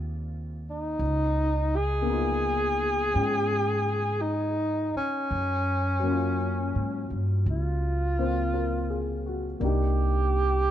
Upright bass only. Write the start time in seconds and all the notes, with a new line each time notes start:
Already playing: D#2
0.99 C#2
3.15 G#2
4.95 muted upright bass stroke
5.31 F#2
6.75 G#2
7.10 G2
7.46 C#2
9.61 C2